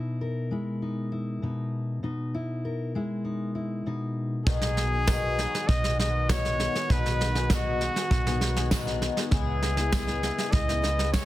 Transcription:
Already playing: steel-string acoustic guitar B2 D#4 E4 G#4
0.21 steel-string acoustic guitar A#4
0.51 steel-string acoustic guitar G#3 E4
0.82 steel-string acoustic guitar D#4
1.12 steel-string acoustic guitar E4
1.42 steel-string acoustic guitar B2 D#4
2.03 steel-string acoustic guitar B2 D#4
2.35 steel-string acoustic guitar E4
2.65 steel-string acoustic guitar A#4
2.95 steel-string acoustic guitar G#3 E4
3.25 steel-string acoustic guitar D#4
3.55 steel-string acoustic guitar E4
3.86 steel-string acoustic guitar B2 D#4
4.46 fingered electric bass B1, twelve-string acoustic guitar B2 D#3 F#3 B3 D#4 G#4, brass ensemble D#3 G#3 B3 F#4, trumpet G#4, kick, snare
4.61 snare
4.77 snare
4.93 twelve-string acoustic guitar F#3 B3 D#4 G#4
5.07 twelve-string acoustic guitar B2 D#3 F#3 B3 D#4 G#4, kick, snare, tambourine
5.38 twelve-string acoustic guitar F#3 B3 D#4 G#4, snare
5.55 snare
5.68 fingered electric bass B1, trumpet D#5, kick, snare
5.84 twelve-string acoustic guitar F#3 B3 D#4 G#4, snare
5.99 twelve-string acoustic guitar F#3 B3 D#4 G#4, trumpet D#5, snare
6.29 twelve-string acoustic guitar B2 D#3 F#3 B3 D#4 G#4, trumpet C#5, kick, snare, tambourine
6.45 snare
6.60 snare
6.75 twelve-string acoustic guitar F#3 B3 D#4 G#4, snare
6.90 fingered electric bass B1, twelve-string acoustic guitar B2 D#3 F#3 B3 D#4 G#4, trumpet B4, kick, snare
7.06 snare
7.21 snare
7.35 twelve-string acoustic guitar F#3 B3 D#4 G#4, snare
7.50 twelve-string acoustic guitar B2 D#3 F#3 B3 D#4 G#4, trumpet F#4, kick, snare, tambourine
7.81 twelve-string acoustic guitar F#3 B3 D#4 G#4, snare
7.96 twelve-string acoustic guitar F#3 B3 D#4 G#4, snare
8.11 fingered electric bass B1, kick, snare
8.27 twelve-string acoustic guitar F#3 B3 D#4 G#4, snare
8.41 twelve-string acoustic guitar F#3 B3 D#4 G#4, snare
8.56 twelve-string acoustic guitar F#3 B3 D#4 G#4, snare
8.71 twelve-string acoustic guitar B2 D#3 F#3 B3 D#4 G#4, kick, snare, tambourine
8.87 snare
9.02 snare
9.17 twelve-string acoustic guitar F#3 B3 D#4 G#4, snare
9.31 fingered electric bass C#2, twelve-string acoustic guitar C#3 G#3 B3 E4 G#4, brass ensemble C#3 E4, trumpet G#4, kick, snare
9.62 snare
9.76 twelve-string acoustic guitar B3 E4 G#4, snare
9.92 twelve-string acoustic guitar C#3 G#3 B3 E4 G#4, kick, snare, tambourine
10.07 snare
10.23 twelve-string acoustic guitar G#3 B3 E4 G#4, snare
10.38 twelve-string acoustic guitar B3 E4 G#4, snare
10.52 fingered electric bass C#2, trumpet D#5, kick, snare
10.68 twelve-string acoustic guitar B3 E4 G#4, snare
10.82 twelve-string acoustic guitar G#3 B3 E4 G#4, snare
10.99 snare
11.13 twelve-string acoustic guitar C#3 G#3 B3 E4 G#4, trumpet C#5, kick, snare, tambourine

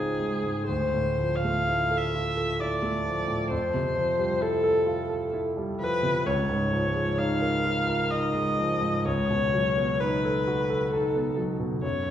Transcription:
Already playing: grand piano C#2 G#2 G#3 C4 D#4 F4, viola G#4
0.19 grand piano G#3
0.43 grand piano G#2
0.67 grand piano D2, viola C5
0.94 grand piano A2
1.19 grand piano F3
1.36 viola F5
1.44 grand piano A3
1.67 grand piano E4
1.91 grand piano A4
1.98 viola E5
2.14 grand piano F4
2.37 grand piano A4
2.60 grand piano E4, viola D5
2.82 grand piano A3
3.05 grand piano F3
3.28 grand piano A2
3.50 grand piano F2, viola C5
3.74 grand piano C3
3.96 grand piano F3
4.18 grand piano G3
4.41 grand piano E4, viola A4
4.64 grand piano A4
4.87 grand piano F4
5.09 grand piano A4
5.33 grand piano E4
5.57 grand piano G3
5.80 grand piano F3, viola B4
6.03 grand piano C3
6.26 grand piano C#2, viola C#5
6.49 grand piano G#2
6.72 grand piano F3
6.94 grand piano G#3
7.18 grand piano D#4, viola F5
7.41 grand piano A#4
7.64 grand piano F4
7.87 grand piano A#4
8.10 grand piano D#4, viola D#5
8.35 grand piano G#3
8.59 grand piano F3
8.81 grand piano G#2
9.05 grand piano C#2, viola C#5
9.30 grand piano B2
9.54 grand piano F#3
9.77 grand piano B3
10.00 grand piano D#4, viola B4
10.25 grand piano A4
10.47 grand piano F#4
10.70 grand piano A4
10.92 grand piano D#4, viola A4
11.15 grand piano B3
11.37 grand piano F#3
11.59 grand piano B2
11.83 grand piano F#2, viola C#5
12.06 grand piano C#3

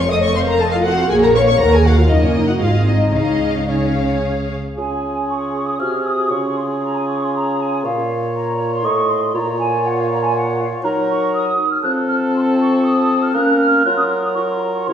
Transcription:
Already playing: double bass section F1, cello section F2, violin section F5
0.00 violin section C#6
0.09 viola section A3 A4, french horn section D#5, violin section D#6
0.14 violin section D#5
0.21 french horn section C#5, violin section C#6
0.33 viola section C4 C5, french horn section C5, violin section C6
0.37 violin section F5
0.47 french horn section A#4, violin section A#5
0.59 viola section A3 A4, french horn section A4, violin section D#5 A5
0.71 french horn section F4, violin section F5
0.83 viola section C4 C5, french horn section F#4, violin section F#5
0.88 violin section F5
1.09 double bass section A#1, cello section A#2, viola section A#3 A#4, french horn section G#4, violin section C#5 G#5
1.23 french horn section A#4, violin section A#5
1.35 viola section C#4 C#5, french horn section C#5, violin section F5 C#6
1.48 french horn section C#5, violin section C#6
1.59 double bass section D#2, cello section D#2, viola section A#3 A#4, french horn section A#4, violin section F#5 A#5
1.73 french horn section G#4, violin section G#5
1.84 french horn section F#4, violin section F5 F#5
1.97 french horn section F4, violin section F5
2.09 double bass section F#1, cello section F#2, viola section A#3 A#4, french horn section D#4, violin section D#5
2.22 french horn section C#4, violin section C#5
2.36 french horn section D#4, violin section D#5
2.47 french horn section F#4, violin section F#5
2.60 double bass section G#1, cello section G#2, viola section C4 G#4, french horn section F4, violin section D#5 F5
2.87 french horn section D#4, violin section D#5
3.13 double bass section C#2, cello section C#3, viola section C#4 G#4, french horn section D#4, violin section D#5 F5
3.69 french horn section C#4, viola section C#4 G#4, violin section C#5 F5
4.76 bassoon C#3, clarinet F4, cor anglais G#4, flute section G#5
5.28 flute section C#6
5.67 flute section D#6
5.79 bassoon C3, clarinet F#4, flute section F6
6.05 flute section D#6
6.30 bassoon C#3, clarinet F4, flute section C#6
6.57 flute section C6
6.82 flute section A#5
6.96 flute section G#5
7.08 flute section C#6
7.23 flute section C6
7.35 flute section A#5
7.60 flute section G#5
7.84 bassoon A#2, cor anglais C#5, flute section F5
8.34 flute section A#5
8.72 flute section C6
8.83 bassoon A2, cor anglais D#5, flute section C#6
9.09 flute section C6
9.34 bassoon A#2, clarinet F4, cor anglais C#5, flute section A#5
9.59 flute section G#5
9.85 flute section F#5
9.98 flute section F5
10.09 flute section A#5
10.24 flute section G#5
10.35 flute section F#5
10.60 flute section F5
10.84 bassoon F#3, clarinet D#4, cor anglais A#4, flute section A#5
11.08 flute section C#6
11.34 flute section D#6
11.71 flute section F6
11.83 bassoon F3, clarinet C4, cor anglais A4, flute section F#6
12.09 flute section F6
12.35 flute section C6
12.59 flute section C#6
12.85 flute section D#6
13.22 flute section F6
13.34 bassoon A#3, clarinet C#4, cor anglais A#4, flute section F#6
13.59 flute section F6
13.84 bassoon F#3, clarinet F4, cor anglais A#4, flute section F#6
13.98 flute section D#6
14.09 flute section F6
14.22 flute section D#6
14.35 clarinet F4, cor anglais A#4, flute section C#6
14.48 flute section C6
14.59 flute section A#5
14.73 flute section C#6
14.86 bassoon C3, clarinet E4, cor anglais A#4, flute section C6

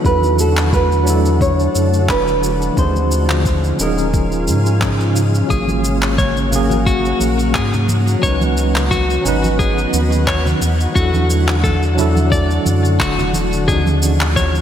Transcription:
Already playing: ambient pad D3 A3 F#4
0.01 sub bass E2, tine electric piano F#3 D4, kick
0.05 tine electric piano E4 A4, nylon-string guitar B4, shaker
0.23 shaker
0.39 nylon-string guitar A4, shaker
0.57 clap, shaker
0.73 nylon-string guitar B4, kick, shaker
0.92 shaker
1.03 tine electric piano F#3 D4, shaker
1.08 tine electric piano E4 A4
1.25 shaker
1.41 nylon-string guitar C#5, kick, shaker
1.60 shaker
1.75 sub bass F#2, shaker
1.94 shaker
2.09 sub bass E1, nylon-string guitar B4, kick, clap, shaker
2.28 shaker
2.44 shaker
2.62 shaker
2.74 sub bass D#2, ambient pad C#3 G#3 F4, tine electric piano F3 C#4, kick, shaker
2.78 tine electric piano D#4 G#4, nylon-string guitar C5
2.96 shaker
3.12 shaker
3.30 clap, shaker
3.46 kick, shaker
3.64 shaker
3.76 sub bass D#1, tine electric piano F3 C#4, shaker
3.81 tine electric piano D#4 G#4, nylon-string guitar A#4
3.98 shaker
4.14 kick, shaker
4.32 shaker
4.48 sub bass G#2, shaker
4.66 shaker
4.80 tine electric piano F3 C#4 D#4 G#4, kick, clap, shaker
5.00 shaker
5.16 shaker
5.35 shaker
5.47 sub bass G#1, tine electric piano F#3 A#3, ambient pad A#3 F#4, clean electric guitar G#4, kick, shaker
5.51 tine electric piano C#4 G#4
5.68 high conga, shaker
5.84 shaker
6.02 clap, shaker
6.18 clean electric guitar C#5, kick, high conga, shaker
6.37 shaker
6.49 tine electric piano F#3 A#3, low conga, shaker
6.53 tine electric piano C#4 G#4
6.71 high conga, shaker
6.86 clean electric guitar F#4, kick, shaker
7.05 shaker
7.20 sub bass A#1, high conga, shaker
7.39 shaker
7.55 sub bass G#2, clean electric guitar G#4, kick, clap, shaker
7.73 low conga, shaker
7.88 high conga, shaker
8.08 shaker
8.19 sub bass C#2, ambient pad D#3 B3, tine electric piano F#3 C#4, clean electric guitar C#5, kick, shaker
8.24 tine electric piano D#4 B4
8.41 high conga, shaker
8.57 shaker
8.76 clap, shaker
8.91 clean electric guitar F#4, kick, high conga, shaker
9.10 shaker
9.22 sub bass G#1, tine electric piano F#3 C#4, low conga
9.26 tine electric piano D#4 B4, shaker
9.44 high conga, shaker
9.59 clean electric guitar G#4, kick, shaker
9.78 shaker
9.93 sub bass D#2, high conga, shaker
10.12 shaker
10.27 clean electric guitar C#5, kick, clap, shaker
10.46 low conga, shaker
10.61 sub bass E2, ambient pad D3 A3, high conga, shaker
10.80 shaker
10.92 sub bass E2, tine electric piano F#3 D4, clean electric guitar F#4, kick, shaker
10.97 tine electric piano E4 A4
11.14 high conga, shaker
11.30 shaker
11.48 clap, shaker
11.64 clean electric guitar A4, kick, high conga, shaker
11.83 shaker
11.94 tine electric piano F#3 D4, low conga, shaker
11.99 tine electric piano E4 A4
12.16 high conga, shaker
12.32 clean electric guitar D5, kick, shaker
12.51 shaker
12.66 sub bass F#2, high conga, shaker
12.85 shaker
13.00 sub bass E1, clean electric guitar F#4, kick, clap, shaker
13.19 low conga, shaker
13.34 high conga, shaker
13.53 shaker
13.65 sub bass D#2, ambient pad C#3 G#3 F4, tine electric piano F3 C#4, clean electric guitar G#4, kick, shaker
13.69 tine electric piano D#4 G#4
13.86 high conga, shaker
14.03 shaker
14.21 clap, shaker
14.36 clean electric guitar C#5, kick, high conga, shaker
14.55 shaker

